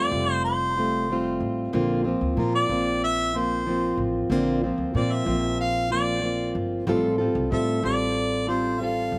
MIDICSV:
0, 0, Header, 1, 4, 480
1, 0, Start_track
1, 0, Tempo, 642398
1, 1296, Time_signature, 4, 2, 24, 8
1, 6864, End_track
2, 0, Start_track
2, 0, Title_t, "Harmonica"
2, 0, Program_c, 0, 22
2, 0, Note_on_c, 0, 74, 101
2, 308, Note_off_c, 0, 74, 0
2, 334, Note_on_c, 0, 72, 100
2, 1026, Note_off_c, 0, 72, 0
2, 1781, Note_on_c, 0, 70, 85
2, 1891, Note_off_c, 0, 70, 0
2, 1906, Note_on_c, 0, 74, 99
2, 2237, Note_off_c, 0, 74, 0
2, 2271, Note_on_c, 0, 76, 116
2, 2519, Note_on_c, 0, 72, 94
2, 2531, Note_off_c, 0, 76, 0
2, 2988, Note_off_c, 0, 72, 0
2, 3706, Note_on_c, 0, 74, 87
2, 3821, Note_on_c, 0, 76, 98
2, 3832, Note_off_c, 0, 74, 0
2, 4179, Note_off_c, 0, 76, 0
2, 4187, Note_on_c, 0, 77, 115
2, 4405, Note_off_c, 0, 77, 0
2, 4424, Note_on_c, 0, 74, 94
2, 4870, Note_off_c, 0, 74, 0
2, 5611, Note_on_c, 0, 76, 88
2, 5836, Note_off_c, 0, 76, 0
2, 5865, Note_on_c, 0, 74, 100
2, 6309, Note_off_c, 0, 74, 0
2, 6340, Note_on_c, 0, 72, 98
2, 6579, Note_on_c, 0, 77, 110
2, 6590, Note_off_c, 0, 72, 0
2, 6864, Note_off_c, 0, 77, 0
2, 6864, End_track
3, 0, Start_track
3, 0, Title_t, "Steel-string acoustic guitar"
3, 0, Program_c, 1, 25
3, 0, Note_on_c, 1, 55, 57
3, 0, Note_on_c, 1, 57, 69
3, 0, Note_on_c, 1, 60, 66
3, 0, Note_on_c, 1, 65, 68
3, 84, Note_off_c, 1, 65, 0
3, 92, Note_off_c, 1, 55, 0
3, 93, Note_on_c, 1, 65, 56
3, 94, Note_off_c, 1, 60, 0
3, 96, Note_off_c, 1, 57, 0
3, 103, Note_on_c, 1, 60, 49
3, 110, Note_on_c, 1, 57, 47
3, 116, Note_on_c, 1, 55, 48
3, 575, Note_off_c, 1, 65, 0
3, 578, Note_on_c, 1, 65, 59
3, 583, Note_off_c, 1, 57, 0
3, 583, Note_off_c, 1, 60, 0
3, 586, Note_off_c, 1, 55, 0
3, 586, Note_on_c, 1, 60, 50
3, 594, Note_on_c, 1, 57, 48
3, 604, Note_on_c, 1, 55, 45
3, 810, Note_off_c, 1, 55, 0
3, 817, Note_off_c, 1, 65, 0
3, 819, Note_off_c, 1, 57, 0
3, 819, Note_on_c, 1, 55, 58
3, 821, Note_off_c, 1, 60, 0
3, 828, Note_on_c, 1, 57, 62
3, 837, Note_on_c, 1, 60, 68
3, 841, Note_on_c, 1, 65, 74
3, 1290, Note_on_c, 1, 46, 83
3, 1292, Note_on_c, 1, 50, 84
3, 1293, Note_off_c, 1, 55, 0
3, 1296, Note_on_c, 1, 53, 94
3, 1297, Note_off_c, 1, 57, 0
3, 1300, Note_on_c, 1, 58, 99
3, 1303, Note_off_c, 1, 60, 0
3, 1304, Note_off_c, 1, 65, 0
3, 1306, Note_on_c, 1, 60, 90
3, 1307, Note_on_c, 1, 65, 109
3, 1517, Note_off_c, 1, 65, 0
3, 1526, Note_off_c, 1, 60, 0
3, 1526, Note_on_c, 1, 65, 61
3, 1534, Note_off_c, 1, 46, 0
3, 1534, Note_off_c, 1, 50, 0
3, 1535, Note_on_c, 1, 60, 57
3, 1536, Note_off_c, 1, 53, 0
3, 1537, Note_off_c, 1, 58, 0
3, 1546, Note_on_c, 1, 58, 51
3, 1553, Note_on_c, 1, 53, 47
3, 1760, Note_off_c, 1, 53, 0
3, 1769, Note_on_c, 1, 53, 62
3, 1770, Note_off_c, 1, 58, 0
3, 1772, Note_off_c, 1, 65, 0
3, 1776, Note_off_c, 1, 60, 0
3, 1779, Note_on_c, 1, 58, 62
3, 1786, Note_on_c, 1, 60, 63
3, 1793, Note_on_c, 1, 65, 68
3, 2004, Note_off_c, 1, 65, 0
3, 2013, Note_off_c, 1, 53, 0
3, 2013, Note_on_c, 1, 65, 55
3, 2016, Note_off_c, 1, 60, 0
3, 2018, Note_off_c, 1, 58, 0
3, 2025, Note_on_c, 1, 60, 57
3, 2032, Note_on_c, 1, 58, 55
3, 2041, Note_on_c, 1, 53, 46
3, 2492, Note_off_c, 1, 65, 0
3, 2495, Note_on_c, 1, 65, 59
3, 2503, Note_off_c, 1, 58, 0
3, 2503, Note_off_c, 1, 60, 0
3, 2506, Note_on_c, 1, 60, 50
3, 2511, Note_on_c, 1, 58, 51
3, 2521, Note_off_c, 1, 53, 0
3, 2524, Note_on_c, 1, 53, 45
3, 2730, Note_off_c, 1, 53, 0
3, 2736, Note_off_c, 1, 65, 0
3, 2739, Note_on_c, 1, 53, 70
3, 2740, Note_off_c, 1, 58, 0
3, 2742, Note_off_c, 1, 60, 0
3, 2749, Note_on_c, 1, 58, 59
3, 2755, Note_on_c, 1, 60, 65
3, 2766, Note_on_c, 1, 65, 62
3, 3211, Note_on_c, 1, 46, 93
3, 3213, Note_off_c, 1, 58, 0
3, 3215, Note_on_c, 1, 50, 95
3, 3217, Note_off_c, 1, 53, 0
3, 3220, Note_on_c, 1, 53, 98
3, 3222, Note_on_c, 1, 58, 93
3, 3223, Note_off_c, 1, 60, 0
3, 3226, Note_on_c, 1, 60, 100
3, 3229, Note_off_c, 1, 65, 0
3, 3232, Note_on_c, 1, 65, 95
3, 3449, Note_off_c, 1, 65, 0
3, 3454, Note_off_c, 1, 46, 0
3, 3456, Note_off_c, 1, 50, 0
3, 3457, Note_off_c, 1, 60, 0
3, 3458, Note_off_c, 1, 53, 0
3, 3458, Note_on_c, 1, 65, 63
3, 3459, Note_off_c, 1, 58, 0
3, 3466, Note_on_c, 1, 60, 60
3, 3472, Note_on_c, 1, 58, 54
3, 3483, Note_on_c, 1, 53, 50
3, 3681, Note_off_c, 1, 53, 0
3, 3690, Note_on_c, 1, 53, 59
3, 3691, Note_off_c, 1, 58, 0
3, 3698, Note_off_c, 1, 65, 0
3, 3700, Note_on_c, 1, 58, 62
3, 3702, Note_off_c, 1, 60, 0
3, 3712, Note_on_c, 1, 60, 70
3, 3719, Note_on_c, 1, 65, 69
3, 3925, Note_off_c, 1, 65, 0
3, 3932, Note_off_c, 1, 60, 0
3, 3933, Note_off_c, 1, 53, 0
3, 3934, Note_on_c, 1, 65, 58
3, 3939, Note_off_c, 1, 58, 0
3, 3941, Note_on_c, 1, 60, 51
3, 3953, Note_on_c, 1, 58, 51
3, 3959, Note_on_c, 1, 53, 46
3, 4410, Note_off_c, 1, 65, 0
3, 4413, Note_on_c, 1, 65, 52
3, 4421, Note_off_c, 1, 58, 0
3, 4421, Note_off_c, 1, 60, 0
3, 4424, Note_on_c, 1, 60, 48
3, 4430, Note_on_c, 1, 58, 50
3, 4438, Note_off_c, 1, 53, 0
3, 4441, Note_on_c, 1, 53, 50
3, 4640, Note_off_c, 1, 53, 0
3, 4649, Note_on_c, 1, 53, 61
3, 4650, Note_off_c, 1, 58, 0
3, 4654, Note_off_c, 1, 65, 0
3, 4659, Note_on_c, 1, 58, 73
3, 4660, Note_off_c, 1, 60, 0
3, 4668, Note_on_c, 1, 60, 66
3, 4673, Note_on_c, 1, 65, 67
3, 5131, Note_on_c, 1, 45, 88
3, 5135, Note_off_c, 1, 53, 0
3, 5136, Note_on_c, 1, 53, 88
3, 5137, Note_off_c, 1, 58, 0
3, 5138, Note_on_c, 1, 55, 97
3, 5144, Note_off_c, 1, 60, 0
3, 5145, Note_on_c, 1, 60, 93
3, 5147, Note_off_c, 1, 65, 0
3, 5147, Note_on_c, 1, 65, 96
3, 5150, Note_on_c, 1, 69, 106
3, 5357, Note_off_c, 1, 69, 0
3, 5366, Note_on_c, 1, 69, 64
3, 5370, Note_off_c, 1, 65, 0
3, 5373, Note_off_c, 1, 45, 0
3, 5376, Note_off_c, 1, 53, 0
3, 5377, Note_off_c, 1, 55, 0
3, 5377, Note_off_c, 1, 60, 0
3, 5379, Note_on_c, 1, 65, 52
3, 5386, Note_on_c, 1, 60, 49
3, 5393, Note_on_c, 1, 55, 46
3, 5601, Note_off_c, 1, 55, 0
3, 5610, Note_on_c, 1, 55, 67
3, 5611, Note_off_c, 1, 69, 0
3, 5613, Note_off_c, 1, 60, 0
3, 5617, Note_off_c, 1, 65, 0
3, 5622, Note_on_c, 1, 60, 67
3, 5627, Note_on_c, 1, 65, 67
3, 5633, Note_on_c, 1, 69, 77
3, 5839, Note_off_c, 1, 69, 0
3, 5848, Note_off_c, 1, 65, 0
3, 5848, Note_on_c, 1, 69, 53
3, 5852, Note_off_c, 1, 55, 0
3, 5857, Note_on_c, 1, 65, 58
3, 5858, Note_off_c, 1, 60, 0
3, 5869, Note_on_c, 1, 60, 52
3, 5872, Note_on_c, 1, 55, 51
3, 6320, Note_off_c, 1, 69, 0
3, 6329, Note_on_c, 1, 69, 55
3, 6330, Note_off_c, 1, 65, 0
3, 6339, Note_on_c, 1, 65, 58
3, 6345, Note_off_c, 1, 60, 0
3, 6348, Note_on_c, 1, 60, 48
3, 6349, Note_off_c, 1, 55, 0
3, 6352, Note_on_c, 1, 55, 46
3, 6565, Note_off_c, 1, 55, 0
3, 6571, Note_off_c, 1, 69, 0
3, 6572, Note_off_c, 1, 60, 0
3, 6574, Note_on_c, 1, 55, 66
3, 6576, Note_off_c, 1, 65, 0
3, 6581, Note_on_c, 1, 60, 64
3, 6590, Note_on_c, 1, 65, 63
3, 6599, Note_on_c, 1, 69, 75
3, 6864, Note_off_c, 1, 55, 0
3, 6864, Note_off_c, 1, 60, 0
3, 6864, Note_off_c, 1, 65, 0
3, 6864, Note_off_c, 1, 69, 0
3, 6864, End_track
4, 0, Start_track
4, 0, Title_t, "Upright bass"
4, 0, Program_c, 2, 32
4, 85, Note_on_c, 2, 29, 95
4, 1022, Note_off_c, 2, 29, 0
4, 1049, Note_on_c, 2, 33, 80
4, 1249, Note_off_c, 2, 33, 0
4, 1294, Note_on_c, 2, 34, 102
4, 1590, Note_off_c, 2, 34, 0
4, 1651, Note_on_c, 2, 38, 80
4, 1752, Note_off_c, 2, 38, 0
4, 1771, Note_on_c, 2, 46, 98
4, 1970, Note_off_c, 2, 46, 0
4, 2012, Note_on_c, 2, 34, 84
4, 2945, Note_off_c, 2, 34, 0
4, 2970, Note_on_c, 2, 33, 86
4, 3170, Note_off_c, 2, 33, 0
4, 3210, Note_on_c, 2, 34, 102
4, 3508, Note_off_c, 2, 34, 0
4, 3570, Note_on_c, 2, 38, 81
4, 3672, Note_off_c, 2, 38, 0
4, 3696, Note_on_c, 2, 46, 94
4, 3893, Note_off_c, 2, 46, 0
4, 3931, Note_on_c, 2, 34, 103
4, 4863, Note_off_c, 2, 34, 0
4, 4894, Note_on_c, 2, 31, 88
4, 5091, Note_off_c, 2, 31, 0
4, 5132, Note_on_c, 2, 33, 110
4, 5428, Note_off_c, 2, 33, 0
4, 5493, Note_on_c, 2, 36, 90
4, 5592, Note_off_c, 2, 36, 0
4, 5618, Note_on_c, 2, 45, 101
4, 5813, Note_off_c, 2, 45, 0
4, 5853, Note_on_c, 2, 33, 96
4, 6782, Note_off_c, 2, 33, 0
4, 6813, Note_on_c, 2, 31, 85
4, 6864, Note_off_c, 2, 31, 0
4, 6864, End_track
0, 0, End_of_file